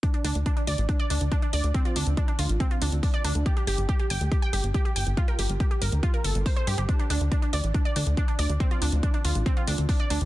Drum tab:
HH |xxoxxxoxxxoxxxox|xxoxxxoxxxoxoxox|xxoxxxoxxxoxxxox|xxoxxxoxxxoxoxox|
BD |o---o---o---o---|o---o---o---o---|o---o---o---o---|o---o---o---o---|

HH |xxoxxxoxxxoxxxox|xxoxxxoxxxoxoxox|
BD |o---o---o---o---|o---o---o---o---|